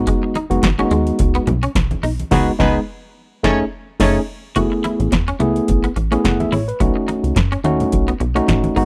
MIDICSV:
0, 0, Header, 1, 7, 480
1, 0, Start_track
1, 0, Tempo, 560748
1, 61, Time_signature, 4, 2, 24, 8
1, 7576, End_track
2, 0, Start_track
2, 0, Title_t, "Horn section"
2, 0, Program_c, 0, 61
2, 1978, Note_on_c, 0, 59, 85
2, 1978, Note_on_c, 0, 71, 92
2, 1979, Note_on_c, 0, 66, 97
2, 1979, Note_on_c, 0, 68, 100
2, 2105, Note_off_c, 0, 59, 0
2, 2105, Note_off_c, 0, 71, 0
2, 2106, Note_off_c, 0, 66, 0
2, 2106, Note_off_c, 0, 68, 0
2, 2220, Note_on_c, 0, 68, 101
2, 2221, Note_on_c, 0, 59, 104
2, 2221, Note_on_c, 0, 71, 113
2, 2222, Note_on_c, 0, 66, 101
2, 2347, Note_off_c, 0, 59, 0
2, 2347, Note_off_c, 0, 68, 0
2, 2347, Note_off_c, 0, 71, 0
2, 2348, Note_off_c, 0, 66, 0
2, 2940, Note_on_c, 0, 73, 104
2, 2942, Note_on_c, 0, 61, 114
2, 2942, Note_on_c, 0, 69, 110
2, 3067, Note_off_c, 0, 73, 0
2, 3068, Note_off_c, 0, 61, 0
2, 3068, Note_off_c, 0, 69, 0
2, 3421, Note_on_c, 0, 73, 97
2, 3422, Note_on_c, 0, 69, 110
2, 3423, Note_on_c, 0, 61, 108
2, 3547, Note_off_c, 0, 69, 0
2, 3547, Note_off_c, 0, 73, 0
2, 3549, Note_off_c, 0, 61, 0
2, 7576, End_track
3, 0, Start_track
3, 0, Title_t, "Tine electric piano"
3, 0, Program_c, 1, 4
3, 0, Note_on_c, 1, 56, 80
3, 0, Note_on_c, 1, 59, 81
3, 0, Note_on_c, 1, 63, 89
3, 0, Note_on_c, 1, 66, 103
3, 300, Note_off_c, 1, 56, 0
3, 302, Note_off_c, 1, 59, 0
3, 303, Note_off_c, 1, 63, 0
3, 304, Note_off_c, 1, 66, 0
3, 428, Note_on_c, 1, 56, 83
3, 428, Note_on_c, 1, 59, 84
3, 432, Note_on_c, 1, 63, 76
3, 434, Note_on_c, 1, 66, 91
3, 578, Note_off_c, 1, 56, 0
3, 578, Note_off_c, 1, 59, 0
3, 580, Note_off_c, 1, 63, 0
3, 581, Note_off_c, 1, 66, 0
3, 672, Note_on_c, 1, 56, 88
3, 673, Note_on_c, 1, 58, 62
3, 676, Note_on_c, 1, 63, 83
3, 680, Note_on_c, 1, 66, 101
3, 723, Note_off_c, 1, 58, 0
3, 728, Note_on_c, 1, 59, 76
3, 1288, Note_off_c, 1, 56, 0
3, 1290, Note_off_c, 1, 63, 0
3, 1292, Note_off_c, 1, 66, 0
3, 1316, Note_off_c, 1, 59, 0
3, 1976, Note_on_c, 1, 56, 105
3, 1978, Note_on_c, 1, 59, 105
3, 1981, Note_on_c, 1, 63, 109
3, 1983, Note_on_c, 1, 66, 108
3, 2146, Note_off_c, 1, 56, 0
3, 2147, Note_off_c, 1, 59, 0
3, 2149, Note_off_c, 1, 63, 0
3, 2150, Note_off_c, 1, 66, 0
3, 2217, Note_on_c, 1, 56, 113
3, 2217, Note_on_c, 1, 59, 104
3, 2221, Note_on_c, 1, 63, 112
3, 2224, Note_on_c, 1, 68, 103
3, 2387, Note_off_c, 1, 56, 0
3, 2387, Note_off_c, 1, 59, 0
3, 2389, Note_off_c, 1, 63, 0
3, 2390, Note_off_c, 1, 68, 0
3, 2939, Note_on_c, 1, 57, 103
3, 2943, Note_on_c, 1, 61, 104
3, 2946, Note_on_c, 1, 63, 97
3, 2946, Note_on_c, 1, 68, 95
3, 3108, Note_off_c, 1, 57, 0
3, 3110, Note_off_c, 1, 61, 0
3, 3112, Note_off_c, 1, 63, 0
3, 3112, Note_off_c, 1, 68, 0
3, 3421, Note_on_c, 1, 57, 107
3, 3425, Note_on_c, 1, 61, 104
3, 3427, Note_on_c, 1, 63, 107
3, 3430, Note_on_c, 1, 68, 114
3, 3589, Note_off_c, 1, 57, 0
3, 3591, Note_off_c, 1, 61, 0
3, 3592, Note_off_c, 1, 63, 0
3, 3594, Note_off_c, 1, 68, 0
3, 3899, Note_on_c, 1, 57, 83
3, 3902, Note_on_c, 1, 59, 71
3, 3905, Note_on_c, 1, 64, 77
3, 3909, Note_on_c, 1, 68, 84
3, 4370, Note_off_c, 1, 57, 0
3, 4372, Note_off_c, 1, 59, 0
3, 4373, Note_off_c, 1, 64, 0
3, 4375, Note_off_c, 1, 68, 0
3, 4618, Note_on_c, 1, 57, 89
3, 4621, Note_on_c, 1, 59, 84
3, 4625, Note_on_c, 1, 64, 85
3, 4625, Note_on_c, 1, 68, 103
3, 5021, Note_off_c, 1, 57, 0
3, 5022, Note_off_c, 1, 59, 0
3, 5025, Note_off_c, 1, 64, 0
3, 5025, Note_off_c, 1, 68, 0
3, 5235, Note_on_c, 1, 57, 85
3, 5237, Note_on_c, 1, 59, 82
3, 5239, Note_on_c, 1, 64, 74
3, 5242, Note_on_c, 1, 68, 98
3, 5345, Note_on_c, 1, 78, 71
3, 5471, Note_off_c, 1, 78, 0
3, 5480, Note_on_c, 1, 76, 67
3, 5578, Note_off_c, 1, 76, 0
3, 5587, Note_on_c, 1, 73, 65
3, 5616, Note_off_c, 1, 57, 0
3, 5617, Note_off_c, 1, 59, 0
3, 5618, Note_off_c, 1, 64, 0
3, 5619, Note_off_c, 1, 68, 0
3, 5711, Note_off_c, 1, 73, 0
3, 5719, Note_on_c, 1, 71, 68
3, 5823, Note_on_c, 1, 57, 82
3, 5824, Note_on_c, 1, 61, 78
3, 5827, Note_on_c, 1, 63, 73
3, 5829, Note_on_c, 1, 66, 91
3, 5945, Note_off_c, 1, 71, 0
3, 6293, Note_off_c, 1, 57, 0
3, 6293, Note_off_c, 1, 61, 0
3, 6294, Note_off_c, 1, 63, 0
3, 6296, Note_off_c, 1, 66, 0
3, 6540, Note_on_c, 1, 57, 90
3, 6541, Note_on_c, 1, 61, 91
3, 6544, Note_on_c, 1, 63, 84
3, 6547, Note_on_c, 1, 66, 107
3, 6942, Note_off_c, 1, 57, 0
3, 6943, Note_off_c, 1, 61, 0
3, 6944, Note_off_c, 1, 63, 0
3, 6945, Note_off_c, 1, 66, 0
3, 7149, Note_on_c, 1, 57, 88
3, 7150, Note_on_c, 1, 61, 80
3, 7154, Note_on_c, 1, 63, 92
3, 7155, Note_on_c, 1, 66, 101
3, 7495, Note_off_c, 1, 63, 0
3, 7498, Note_off_c, 1, 57, 0
3, 7498, Note_off_c, 1, 61, 0
3, 7498, Note_off_c, 1, 66, 0
3, 7499, Note_on_c, 1, 56, 84
3, 7502, Note_on_c, 1, 59, 86
3, 7506, Note_on_c, 1, 63, 81
3, 7508, Note_on_c, 1, 66, 92
3, 7576, Note_off_c, 1, 56, 0
3, 7576, Note_off_c, 1, 59, 0
3, 7576, Note_off_c, 1, 63, 0
3, 7576, Note_off_c, 1, 66, 0
3, 7576, End_track
4, 0, Start_track
4, 0, Title_t, "Clean electric guitar"
4, 0, Program_c, 2, 27
4, 62, Note_on_c, 2, 56, 77
4, 138, Note_off_c, 2, 56, 0
4, 305, Note_on_c, 2, 63, 72
4, 380, Note_off_c, 2, 63, 0
4, 678, Note_on_c, 2, 61, 90
4, 737, Note_off_c, 2, 61, 0
4, 783, Note_on_c, 2, 56, 67
4, 859, Note_off_c, 2, 56, 0
4, 1156, Note_on_c, 2, 59, 88
4, 1216, Note_off_c, 2, 59, 0
4, 1395, Note_on_c, 2, 61, 84
4, 1455, Note_off_c, 2, 61, 0
4, 1740, Note_on_c, 2, 63, 77
4, 1817, Note_off_c, 2, 63, 0
4, 3903, Note_on_c, 2, 66, 81
4, 3979, Note_off_c, 2, 66, 0
4, 4145, Note_on_c, 2, 64, 78
4, 4220, Note_off_c, 2, 64, 0
4, 4520, Note_on_c, 2, 61, 88
4, 4579, Note_off_c, 2, 61, 0
4, 4622, Note_on_c, 2, 57, 69
4, 4698, Note_off_c, 2, 57, 0
4, 4998, Note_on_c, 2, 59, 80
4, 5057, Note_off_c, 2, 59, 0
4, 5237, Note_on_c, 2, 61, 77
4, 5296, Note_off_c, 2, 61, 0
4, 5584, Note_on_c, 2, 64, 75
4, 5659, Note_off_c, 2, 64, 0
4, 5823, Note_on_c, 2, 59, 68
4, 5899, Note_off_c, 2, 59, 0
4, 6061, Note_on_c, 2, 63, 69
4, 6138, Note_off_c, 2, 63, 0
4, 6437, Note_on_c, 2, 61, 88
4, 6497, Note_off_c, 2, 61, 0
4, 6546, Note_on_c, 2, 57, 80
4, 6621, Note_off_c, 2, 57, 0
4, 6917, Note_on_c, 2, 59, 76
4, 6977, Note_off_c, 2, 59, 0
4, 7154, Note_on_c, 2, 61, 78
4, 7214, Note_off_c, 2, 61, 0
4, 7501, Note_on_c, 2, 63, 71
4, 7576, Note_off_c, 2, 63, 0
4, 7576, End_track
5, 0, Start_track
5, 0, Title_t, "Analog synth bass"
5, 0, Program_c, 3, 38
5, 0, Note_on_c, 3, 32, 97
5, 100, Note_off_c, 3, 32, 0
5, 431, Note_on_c, 3, 30, 94
5, 512, Note_off_c, 3, 30, 0
5, 537, Note_on_c, 3, 32, 94
5, 718, Note_off_c, 3, 32, 0
5, 778, Note_on_c, 3, 39, 91
5, 959, Note_off_c, 3, 39, 0
5, 1022, Note_on_c, 3, 37, 94
5, 1201, Note_off_c, 3, 37, 0
5, 1259, Note_on_c, 3, 35, 121
5, 1440, Note_off_c, 3, 35, 0
5, 1501, Note_on_c, 3, 35, 82
5, 1681, Note_off_c, 3, 35, 0
5, 1740, Note_on_c, 3, 35, 92
5, 1920, Note_off_c, 3, 35, 0
5, 1979, Note_on_c, 3, 37, 99
5, 2148, Note_off_c, 3, 37, 0
5, 2220, Note_on_c, 3, 37, 108
5, 2389, Note_off_c, 3, 37, 0
5, 2942, Note_on_c, 3, 30, 98
5, 3109, Note_off_c, 3, 30, 0
5, 3422, Note_on_c, 3, 30, 107
5, 3589, Note_off_c, 3, 30, 0
5, 3901, Note_on_c, 3, 30, 94
5, 4001, Note_off_c, 3, 30, 0
5, 4277, Note_on_c, 3, 33, 101
5, 4355, Note_off_c, 3, 33, 0
5, 4382, Note_on_c, 3, 40, 90
5, 4562, Note_off_c, 3, 40, 0
5, 4623, Note_on_c, 3, 37, 79
5, 4802, Note_off_c, 3, 37, 0
5, 4867, Note_on_c, 3, 33, 84
5, 5045, Note_off_c, 3, 33, 0
5, 5105, Note_on_c, 3, 33, 108
5, 5283, Note_off_c, 3, 33, 0
5, 5345, Note_on_c, 3, 30, 81
5, 5523, Note_off_c, 3, 30, 0
5, 5582, Note_on_c, 3, 33, 87
5, 5761, Note_off_c, 3, 33, 0
5, 5824, Note_on_c, 3, 35, 102
5, 5923, Note_off_c, 3, 35, 0
5, 6194, Note_on_c, 3, 37, 91
5, 6274, Note_off_c, 3, 37, 0
5, 6300, Note_on_c, 3, 42, 97
5, 6481, Note_off_c, 3, 42, 0
5, 6540, Note_on_c, 3, 39, 91
5, 6720, Note_off_c, 3, 39, 0
5, 6786, Note_on_c, 3, 35, 84
5, 6964, Note_off_c, 3, 35, 0
5, 7023, Note_on_c, 3, 35, 120
5, 7202, Note_off_c, 3, 35, 0
5, 7263, Note_on_c, 3, 33, 80
5, 7442, Note_off_c, 3, 33, 0
5, 7503, Note_on_c, 3, 32, 100
5, 7576, Note_off_c, 3, 32, 0
5, 7576, End_track
6, 0, Start_track
6, 0, Title_t, "Muted clean electric guitar strokes"
6, 197, Note_on_c, 9, 29, 48
6, 283, Note_off_c, 9, 29, 0
6, 545, Note_on_c, 9, 29, 43
6, 631, Note_off_c, 9, 29, 0
6, 1262, Note_on_c, 9, 29, 52
6, 1347, Note_off_c, 9, 29, 0
6, 4039, Note_on_c, 9, 29, 46
6, 4125, Note_off_c, 9, 29, 0
6, 4386, Note_on_c, 9, 29, 48
6, 4471, Note_off_c, 9, 29, 0
6, 5104, Note_on_c, 9, 29, 42
6, 5189, Note_off_c, 9, 29, 0
6, 5954, Note_on_c, 9, 29, 47
6, 6040, Note_off_c, 9, 29, 0
6, 6303, Note_on_c, 9, 29, 48
6, 6389, Note_off_c, 9, 29, 0
6, 7021, Note_on_c, 9, 29, 46
6, 7106, Note_off_c, 9, 29, 0
6, 7261, Note_on_c, 9, 29, 46
6, 7347, Note_off_c, 9, 29, 0
6, 7576, End_track
7, 0, Start_track
7, 0, Title_t, "Drums"
7, 58, Note_on_c, 9, 42, 84
7, 59, Note_on_c, 9, 36, 107
7, 67, Note_on_c, 9, 62, 42
7, 144, Note_off_c, 9, 42, 0
7, 145, Note_off_c, 9, 36, 0
7, 152, Note_off_c, 9, 62, 0
7, 302, Note_on_c, 9, 42, 65
7, 302, Note_on_c, 9, 62, 52
7, 388, Note_off_c, 9, 42, 0
7, 388, Note_off_c, 9, 62, 0
7, 436, Note_on_c, 9, 42, 59
7, 521, Note_off_c, 9, 42, 0
7, 537, Note_on_c, 9, 36, 103
7, 538, Note_on_c, 9, 42, 89
7, 539, Note_on_c, 9, 63, 78
7, 546, Note_on_c, 9, 38, 122
7, 622, Note_off_c, 9, 36, 0
7, 624, Note_off_c, 9, 42, 0
7, 624, Note_off_c, 9, 63, 0
7, 632, Note_off_c, 9, 38, 0
7, 675, Note_on_c, 9, 42, 32
7, 760, Note_off_c, 9, 42, 0
7, 778, Note_on_c, 9, 42, 73
7, 864, Note_off_c, 9, 42, 0
7, 913, Note_on_c, 9, 42, 55
7, 999, Note_off_c, 9, 42, 0
7, 1017, Note_on_c, 9, 42, 113
7, 1022, Note_on_c, 9, 36, 127
7, 1028, Note_on_c, 9, 62, 58
7, 1102, Note_off_c, 9, 42, 0
7, 1107, Note_off_c, 9, 36, 0
7, 1113, Note_off_c, 9, 62, 0
7, 1154, Note_on_c, 9, 42, 33
7, 1239, Note_off_c, 9, 42, 0
7, 1260, Note_on_c, 9, 42, 80
7, 1271, Note_on_c, 9, 62, 39
7, 1271, Note_on_c, 9, 64, 84
7, 1345, Note_off_c, 9, 42, 0
7, 1357, Note_off_c, 9, 62, 0
7, 1357, Note_off_c, 9, 64, 0
7, 1394, Note_on_c, 9, 42, 55
7, 1480, Note_off_c, 9, 42, 0
7, 1500, Note_on_c, 9, 63, 70
7, 1501, Note_on_c, 9, 36, 115
7, 1503, Note_on_c, 9, 42, 96
7, 1506, Note_on_c, 9, 38, 110
7, 1586, Note_off_c, 9, 63, 0
7, 1587, Note_off_c, 9, 36, 0
7, 1588, Note_off_c, 9, 42, 0
7, 1591, Note_off_c, 9, 38, 0
7, 1633, Note_on_c, 9, 63, 87
7, 1635, Note_on_c, 9, 42, 39
7, 1719, Note_off_c, 9, 63, 0
7, 1721, Note_off_c, 9, 42, 0
7, 1741, Note_on_c, 9, 46, 75
7, 1826, Note_off_c, 9, 46, 0
7, 1879, Note_on_c, 9, 42, 64
7, 1879, Note_on_c, 9, 63, 47
7, 1965, Note_off_c, 9, 42, 0
7, 1965, Note_off_c, 9, 63, 0
7, 1979, Note_on_c, 9, 49, 86
7, 1980, Note_on_c, 9, 36, 97
7, 1985, Note_on_c, 9, 38, 103
7, 2065, Note_off_c, 9, 36, 0
7, 2065, Note_off_c, 9, 49, 0
7, 2071, Note_off_c, 9, 38, 0
7, 2220, Note_on_c, 9, 36, 99
7, 2224, Note_on_c, 9, 38, 102
7, 2306, Note_off_c, 9, 36, 0
7, 2310, Note_off_c, 9, 38, 0
7, 2941, Note_on_c, 9, 36, 111
7, 2947, Note_on_c, 9, 38, 112
7, 3026, Note_off_c, 9, 36, 0
7, 3032, Note_off_c, 9, 38, 0
7, 3422, Note_on_c, 9, 36, 105
7, 3422, Note_on_c, 9, 49, 84
7, 3428, Note_on_c, 9, 38, 90
7, 3508, Note_off_c, 9, 36, 0
7, 3508, Note_off_c, 9, 49, 0
7, 3514, Note_off_c, 9, 38, 0
7, 3900, Note_on_c, 9, 42, 89
7, 3902, Note_on_c, 9, 36, 108
7, 3910, Note_on_c, 9, 62, 42
7, 3986, Note_off_c, 9, 42, 0
7, 3988, Note_off_c, 9, 36, 0
7, 3996, Note_off_c, 9, 62, 0
7, 4144, Note_on_c, 9, 42, 64
7, 4151, Note_on_c, 9, 62, 57
7, 4229, Note_off_c, 9, 42, 0
7, 4236, Note_off_c, 9, 62, 0
7, 4279, Note_on_c, 9, 42, 57
7, 4364, Note_off_c, 9, 42, 0
7, 4381, Note_on_c, 9, 36, 101
7, 4383, Note_on_c, 9, 42, 86
7, 4386, Note_on_c, 9, 63, 75
7, 4391, Note_on_c, 9, 38, 97
7, 4467, Note_off_c, 9, 36, 0
7, 4469, Note_off_c, 9, 42, 0
7, 4472, Note_off_c, 9, 63, 0
7, 4477, Note_off_c, 9, 38, 0
7, 4519, Note_on_c, 9, 42, 34
7, 4605, Note_off_c, 9, 42, 0
7, 4623, Note_on_c, 9, 42, 74
7, 4709, Note_off_c, 9, 42, 0
7, 4760, Note_on_c, 9, 42, 53
7, 4845, Note_off_c, 9, 42, 0
7, 4864, Note_on_c, 9, 42, 105
7, 4867, Note_on_c, 9, 36, 118
7, 4873, Note_on_c, 9, 62, 55
7, 4949, Note_off_c, 9, 42, 0
7, 4952, Note_off_c, 9, 36, 0
7, 4959, Note_off_c, 9, 62, 0
7, 4997, Note_on_c, 9, 42, 35
7, 5083, Note_off_c, 9, 42, 0
7, 5105, Note_on_c, 9, 42, 73
7, 5191, Note_off_c, 9, 42, 0
7, 5240, Note_on_c, 9, 42, 58
7, 5325, Note_off_c, 9, 42, 0
7, 5345, Note_on_c, 9, 63, 62
7, 5346, Note_on_c, 9, 36, 94
7, 5348, Note_on_c, 9, 42, 85
7, 5352, Note_on_c, 9, 38, 94
7, 5431, Note_off_c, 9, 36, 0
7, 5431, Note_off_c, 9, 63, 0
7, 5434, Note_off_c, 9, 42, 0
7, 5437, Note_off_c, 9, 38, 0
7, 5480, Note_on_c, 9, 42, 34
7, 5482, Note_on_c, 9, 63, 80
7, 5566, Note_off_c, 9, 42, 0
7, 5567, Note_off_c, 9, 63, 0
7, 5586, Note_on_c, 9, 46, 72
7, 5672, Note_off_c, 9, 46, 0
7, 5723, Note_on_c, 9, 42, 57
7, 5809, Note_off_c, 9, 42, 0
7, 5824, Note_on_c, 9, 36, 111
7, 5824, Note_on_c, 9, 42, 77
7, 5831, Note_on_c, 9, 62, 49
7, 5910, Note_off_c, 9, 36, 0
7, 5910, Note_off_c, 9, 42, 0
7, 5917, Note_off_c, 9, 62, 0
7, 6064, Note_on_c, 9, 42, 66
7, 6069, Note_on_c, 9, 62, 53
7, 6150, Note_off_c, 9, 42, 0
7, 6154, Note_off_c, 9, 62, 0
7, 6199, Note_on_c, 9, 42, 54
7, 6284, Note_off_c, 9, 42, 0
7, 6301, Note_on_c, 9, 36, 112
7, 6301, Note_on_c, 9, 42, 86
7, 6304, Note_on_c, 9, 63, 67
7, 6309, Note_on_c, 9, 38, 114
7, 6386, Note_off_c, 9, 36, 0
7, 6387, Note_off_c, 9, 42, 0
7, 6390, Note_off_c, 9, 63, 0
7, 6395, Note_off_c, 9, 38, 0
7, 6440, Note_on_c, 9, 42, 36
7, 6526, Note_off_c, 9, 42, 0
7, 6543, Note_on_c, 9, 42, 71
7, 6629, Note_off_c, 9, 42, 0
7, 6678, Note_on_c, 9, 42, 53
7, 6682, Note_on_c, 9, 64, 78
7, 6764, Note_off_c, 9, 42, 0
7, 6768, Note_off_c, 9, 64, 0
7, 6782, Note_on_c, 9, 42, 96
7, 6786, Note_on_c, 9, 36, 109
7, 6790, Note_on_c, 9, 62, 57
7, 6868, Note_off_c, 9, 42, 0
7, 6871, Note_off_c, 9, 36, 0
7, 6876, Note_off_c, 9, 62, 0
7, 6917, Note_on_c, 9, 42, 37
7, 7003, Note_off_c, 9, 42, 0
7, 7023, Note_on_c, 9, 42, 65
7, 7029, Note_on_c, 9, 62, 39
7, 7109, Note_off_c, 9, 42, 0
7, 7114, Note_off_c, 9, 62, 0
7, 7157, Note_on_c, 9, 42, 54
7, 7242, Note_off_c, 9, 42, 0
7, 7261, Note_on_c, 9, 63, 68
7, 7263, Note_on_c, 9, 36, 95
7, 7263, Note_on_c, 9, 42, 81
7, 7266, Note_on_c, 9, 38, 102
7, 7347, Note_off_c, 9, 63, 0
7, 7348, Note_off_c, 9, 42, 0
7, 7349, Note_off_c, 9, 36, 0
7, 7351, Note_off_c, 9, 38, 0
7, 7393, Note_on_c, 9, 63, 88
7, 7395, Note_on_c, 9, 42, 37
7, 7478, Note_off_c, 9, 63, 0
7, 7481, Note_off_c, 9, 42, 0
7, 7502, Note_on_c, 9, 46, 63
7, 7576, Note_off_c, 9, 46, 0
7, 7576, End_track
0, 0, End_of_file